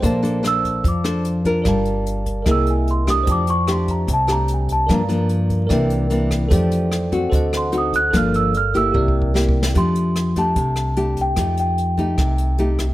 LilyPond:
<<
  \new Staff \with { instrumentName = "Celesta" } { \time 4/4 \key f \major \tempo 4 = 148 r4 e'''4 d'''4 r4 | r2 e'''8 gis''8 c'''8 dis'''8 | d'''8 des'''8 c'''8 bes''8 a''8 bes''8 aes''8 a''8 | bes''4 r2. |
r2 r8 c'''8 ees'''8 fis'''8 | r8 e'''8 f'''8 e'''4 r4. | c'''4. a''2 g''8~ | g''8 g''2. r8 | }
  \new Staff \with { instrumentName = "Tine electric piano" } { \time 4/4 \key f \major <c'' d'' f'' a''>1 | <bes' d'' f'' a''>2 <bes' dis'' e'' gis''>2 | <c'' d'' g'' a''>1 | <bes' d'' f'' bes''>2 <bes' d'' e'' g''>2 |
<a' c'' d'' g''>2 <a' c'' ees'' fis''>2 | <a' bes' d'' f''>2 <g' bes' d'' e''>2 | r1 | r1 | }
  \new Staff \with { instrumentName = "Nylon-string guitar" } { \time 4/4 \key f \major << { <d' a' c''>8 <d' a' c''>8 <d' a' c''>4 r8 <d' a' c''>4 <d' f' bes'>8~ | <d' f' bes'>4. r8 <bes e' gis'>4. <a d' g'>8~ | <a d' g'>8 r8 <a d' g'>4 r8 <a d' g'>4. | <f bes d'>8 <f bes d'>4. <e bes d'>4 <e bes d'>4 |
<a d' g'>4 r8 <c' ges'>4. <c' ees' fis'>8 r8 | <f bes d'>4 r8 <bes e' g'>4. <bes e' g'>4 | <a d' g'>4. <a d' g'>4. <a d' g'>4 | <a ees' g'>4. <a ees' g'>4. <a ees' g'>8 r8 | } \\ { bes2 f2 | g2 c2 | f2 c2 | g,2 c2 |
f2 d2 | g,2 c2 | f2 c2 | f2 c2 | } >> }
  \new Staff \with { instrumentName = "Upright bass" } { \clef bass \time 4/4 \key f \major bes,,2 f,2 | g,,2 c,2 | f,2 c,2 | g,2 c,2 |
f,2 d,2 | g,,2 c,2 | f,2 c,2 | f,2 c,2 | }
  \new DrumStaff \with { instrumentName = "Drums" } \drummode { \time 4/4 <hh bd>8 hh8 <hh ss>8 <hh bd>8 <hh bd>8 <hh ss>8 hh8 <hh bd>8 | <hh bd ss>8 hh8 hh8 <hh bd>8 <hh bd ss>8 hh8 hh8 <hh bd ss>8 | <hh bd>8 hh8 <hh ss>8 <hh bd>8 <hh bd>8 <hh ss>8 hh8 <hh bd>8 | <hh bd ss>8 hh8 hh8 <hh bd>8 <hh bd ss>8 hh8 hh8 <hh bd ss>8 |
<hh bd>8 hh8 <hh ss>8 <hh bd>8 <hh bd>8 <hh ss>8 hh8 <hh bd>8 | <hh bd ss>8 hh8 hh8 <hh bd>8 \tuplet 3/2 { bd8 bd8 bd8 sn8 bd8 sn8 } | <hh bd>8 hh8 <hh ss>8 <hh bd>8 <hh bd>8 <hh ss>8 hh8 <hh bd>8 | <hh bd ss>8 hh8 hh8 <hh bd>8 <hh bd ss>8 hh8 hh8 <hh bd ss>8 | }
>>